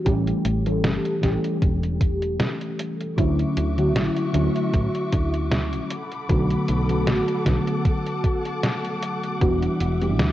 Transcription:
0.05 fretless electric bass A1, fm electric piano E3 G3 A3 C#4 G4, kick, closed hi-hat
0.27 closed hi-hat
0.45 fretless electric bass A1, closed hi-hat
0.65 fm electric piano E3 G3 A3 C#4 A4, closed hi-hat
0.84 fretless electric bass G1, snare, closed hi-hat
1.05 closed hi-hat
1.21 fretless electric bass A1, fm electric piano E3 G3 A3 C#4 G4, kick, snare, closed hi-hat
1.44 closed hi-hat
1.62 fretless electric bass E1, kick, closed hi-hat
1.83 closed hi-hat
2.01 kick, closed hi-hat
2.22 closed hi-hat
2.40 snare, closed hi-hat
2.61 closed hi-hat
2.79 closed hi-hat
3.00 closed hi-hat
3.17 fretless electric bass D2, fm electric piano D3 F#3 A3 C#4 E4, string section F#4 E5 C#6 D6, kick, closed hi-hat
3.39 closed hi-hat
3.57 fretless electric bass D2, closed hi-hat
3.77 fm electric piano D3 F#3 A3 C#4 F#4, closed hi-hat
3.96 fretless electric bass A1, snare, closed hi-hat
4.17 closed hi-hat
4.33 fretless electric bass D2, fm electric piano D3 F#3 A3 C#4 E4, closed hi-hat
4.56 closed hi-hat
4.73 fretless electric bass A1, kick, closed hi-hat
4.95 closed hi-hat
5.12 fretless electric bass D2, kick, closed hi-hat
5.34 closed hi-hat
5.52 snare, closed hi-hat
5.73 closed hi-hat
5.90 string section A4 F#5 B5, closed hi-hat
6.12 closed hi-hat
6.29 fretless electric bass B1, fm electric piano D3 F#3 A3 B3 F#4, kick, closed hi-hat
6.50 closed hi-hat
6.68 fretless electric bass B1, closed hi-hat
6.89 fm electric piano D3 F#3 A3 B3 A4, closed hi-hat
7.07 fretless electric bass A1, snare, closed hi-hat
7.28 closed hi-hat
7.45 fretless electric bass B1, fm electric piano D3 F#3 A3 B3 F#4, string section A5, kick, snare, closed hi-hat
7.67 closed hi-hat
7.85 kick, closed hi-hat
8.07 closed hi-hat
8.24 kick, closed hi-hat
8.45 closed hi-hat
8.63 snare, closed hi-hat
8.84 closed hi-hat
9.02 closed hi-hat
9.23 closed hi-hat
9.41 fretless electric bass E1, fm electric piano E3 G3 B3 D4 F#4, string section G3 E5, kick, closed hi-hat
9.62 closed hi-hat
9.80 fretless electric bass E1, closed hi-hat
10.00 fm electric piano E3 G3 B3 D4 G4, closed hi-hat
10.19 fretless electric bass D2, snare, closed hi-hat

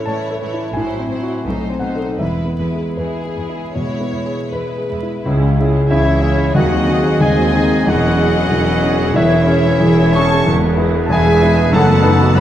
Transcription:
Already playing: grand piano A2 C#4 A4 E5
0.06 cello section A2, viola section E3, violin section E4 C#5, grand piano C#5 A5
0.31 grand piano A4
0.42 cello section A2, viola section E3, violin section E4 C#5
0.54 grand piano E4
0.73 double bass section A1, cello section A2, grand piano A2 G#5, viola section F#3, violin section C5
0.79 violin section E4
0.99 grand piano C4
1.08 cello section A2, viola section F#3, violin section C5
1.14 violin section E4
1.23 grand piano E4 F#4
1.43 double bass section B1, grand piano B1, cello section B2, viola section A3, violin section D#4 C5
1.70 grand piano C4
1.79 cello section B2, viola section A3, violin section D#4 C5, grand piano F#5
1.94 grand piano D#4 A4
2.18 double bass section E1, cello section E2, grand piano E2 E5, viola section G#3, violin section E4 B4
2.45 grand piano B3
2.57 cello section E2, viola section G#3, violin section E4 B4
2.72 grand piano G#4
2.97 cello section E2, viola section G#3, violin section E4 G#4, grand piano B4
3.25 grand piano G#4
3.37 cello section E2, viola section G#3, violin section E4
3.49 grand piano E4
3.75 cello section E2, grand piano B2, viola section G#3, violin section E4 C#5
4.00 grand piano B3
4.13 cello section E2, viola section G#3, violin section E4
4.26 grand piano G#4
4.51 cello section E2, viola section G#3, violin section E4 B4, grand piano B4
4.78 grand piano G#4
4.88 cello section E2, viola section G#3, violin section E4
5.03 grand piano E4
5.23 double bass section C#2, grand piano C#2 C#3, cello section C#2, trombone section C#3 C#4, viola section E4 G#4, trumpet G#4
5.41 viola section C#4 E4
5.56 viola section E4 G#4
5.60 grand piano C#4 E4 G#4
5.71 viola section C#4 E4
5.87 double bass section C#2, cello section C#2, viola section E4 G#4, oboe E4, clarinet E4, violin section C#5 E5, flute C#5, grand piano E5
5.91 grand piano C#2 C#3 E4 C#5, french horn section E3
6.04 viola section C#4 E4
6.21 grand piano C#4 E4 G#4, viola section E4 G#4
6.36 viola section C#4 E4
6.55 grand piano D#2 D#3 F#4 D#5 F#5, double bass section D#2, cello section D#2, trombone section D#3 C4, french horn section F#3, viola section D#4 G#4, oboe F#4, clarinet F#4, violin section D#5 F#5, flute D#5
6.72 viola section C4 F#4
6.87 grand piano C4 D#4 G#4, viola section D#4 G#4
7.04 viola section C4 F#4
7.20 grand piano D#2 D#3 G#4 D#5 G#5, double bass section D#2, cello section D#2, french horn section G#3, viola section D#4 G#4, clarinet G#4, oboe G#4, violin section D#5 G#5, flute D#5
7.38 viola section C4 F#4
7.54 grand piano C4 D#4 G#4, viola section D#4 G#4
7.72 viola section C4 F#4
7.86 grand piano E1 E2 F#4 F#5, double bass section E1, cello section E2, trombone section E3 C#4, viola section E4 G#4, clarinet F#4, oboe F#4, violin section D#5 F#5, flute D#5
7.91 french horn section F#3
8.06 viola section C#4 E4
8.16 grand piano C#4 G#4
8.22 viola section E4 G#4
8.36 viola section C#4 E4
8.50 grand piano E1 E2, double bass section E1, cello section E2, viola section E4 G#4
8.67 viola section C#4 E4
8.81 grand piano C#4 G#4
8.85 viola section E4 G#4
9.01 viola section C#4 E4
9.14 grand piano E1 E2 E4 C#5 E5, double bass section E1, cello section E2, clarinet E4, oboe E4, violin section C#5, flute C#5
9.18 french horn section E3, viola section E4 G#4, violin section E5
9.34 viola section C#4 E4
9.47 grand piano C#4 G#4, viola section E4 G#4
9.67 viola section C#4 E4
9.80 grand piano E1 E2, double bass section E1, cello section E2, viola section E4 G#4
9.99 viola section C#4 E4
10.14 grand piano C#4 G#4 C#5 C#6, french horn section C#4, viola section G#4, oboe C#5, clarinet C#5, flute A5, violin section A5 C#6
10.18 viola section E4
10.32 viola section C#4 E4
10.45 grand piano E1 E2, double bass section E1, cello section E2, viola section G#3 E4, trombone section B3, trumpet B4
10.63 viola section B3 G#4
10.76 viola section G#3 E4, grand piano B3 E4 G#4
10.96 viola section B3 G#4
11.06 grand piano E1 E2 A5
11.10 double bass section E1, cello section E2, viola section G#3 E4, french horn section G#3, oboe G#4, clarinet G#4, grand piano G#4 E5 G#5, violin section E5 G#5, flute E5
11.26 viola section B3 G#4
11.42 viola section G#3 E4, grand piano B3 E4 G#4
11.56 viola section B3 G#4
11.72 grand piano F#1 F#2 A4 F#5 A5, double bass section F#1, cello section F#2, viola section A3 D#4, french horn section A3, oboe A4, clarinet A4, violin section F#5 A5
11.76 flute F#5
11.88 viola section B3 F#4
12.02 viola section A3 D#4, grand piano B3 D#4 B4
12.20 viola section B3 F#4
12.34 grand piano F#1 F#2, viola section A3 D#4, oboe B4, violin section F#5 B5

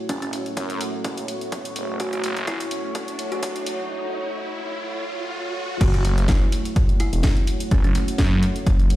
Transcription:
Already playing: ambient pad A3 F#4 C#5, riser
0.09 detuned saw bass F#1, kalimba C#4, kick, closed hi-hat
0.22 kalimba C#4, closed hi-hat
0.33 open hi-hat
0.46 closed hi-hat
0.57 detuned saw bass F#2, kick, closed hi-hat
0.70 closed hi-hat
0.81 open hi-hat
1.04 detuned saw bass F#1, kick, closed hi-hat
1.18 closed hi-hat
1.28 open hi-hat
1.41 closed hi-hat
1.52 kick, closed hi-hat
1.65 closed hi-hat
1.76 detuned saw bass F#1, open hi-hat
2.00 detuned saw bass F#1, kalimba F#4, kick, closed hi-hat
2.13 kalimba F#4, closed hi-hat
2.24 detuned saw bass F#1, open hi-hat
2.37 closed hi-hat
2.47 kalimba E4, kick, closed hi-hat
2.60 closed hi-hat
2.71 open hi-hat
2.95 kick, closed hi-hat
3.08 closed hi-hat
3.19 open hi-hat
3.32 detuned saw bass E1, kalimba F#4, closed hi-hat
3.43 kick, closed hi-hat
3.56 closed hi-hat
3.66 open hi-hat
5.81 detuned saw bass F#1, ambient pad A3 F#4 C#5, kalimba F#4, kick, closed hi-hat, crash
5.94 kalimba F#4, closed hi-hat
6.05 detuned saw bass F#1, open hi-hat
6.18 closed hi-hat
6.28 kalimba E4, kick, snare, closed hi-hat
6.52 open hi-hat
6.65 closed hi-hat
6.76 kick, closed hi-hat
6.89 closed hi-hat
7.00 kalimba E4, open hi-hat
7.13 detuned saw bass E1, closed hi-hat
7.23 kick, snare, closed hi-hat
7.37 closed hi-hat
7.47 open hi-hat
7.60 closed hi-hat
7.71 detuned saw bass F#1, kalimba C#4, kick, closed hi-hat
7.84 kalimba C#4, closed hi-hat
7.95 open hi-hat
8.08 closed hi-hat
8.18 detuned saw bass F#2, kick, snare, closed hi-hat
8.43 open hi-hat
8.56 closed hi-hat
8.66 detuned saw bass F#1, kick, closed hi-hat
8.79 closed hi-hat
8.90 open hi-hat

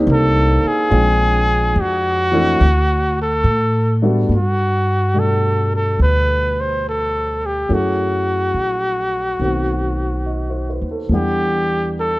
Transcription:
Already playing: grand piano D#3 A#3 C4 D4 D#4 G4
0.07 upright bass C2
0.12 trumpet A4
0.63 trumpet G#4, muted upright bass stroke
0.90 upright bass A#1, grand piano F3 G#3 C4 D4 G5
1.76 upright bass F2
1.82 trumpet F#4
2.32 grand piano E3 A3 C4 D4 E4
2.61 upright bass D2
3.22 trumpet A4
3.44 upright bass A2
4.02 grand piano G3 A3 B3 D4 F#4
4.29 upright bass G2
4.35 trumpet F#4
5.14 grand piano B2 G3 A3 D4 F#5
5.19 trumpet A4
5.76 trumpet A4
5.99 upright bass D2, trumpet B4
6.60 trumpet C5
6.89 trumpet A4
7.46 trumpet G4
7.69 upright bass F#2, grand piano F#3 A3 C#4 E4 G#4
7.74 trumpet F#4
8.54 upright bass A#1
9.39 upright bass B1, grand piano D#3 A3 B3 C4 F#4
10.26 grand piano D#5
10.50 grand piano C5
10.70 grand piano B4
10.81 upright bass D#2
10.91 grand piano A4
11.09 upright bass E2, grand piano E3 G3 B3
11.13 grand piano D4 F#5, trumpet G4
12.00 trumpet A4

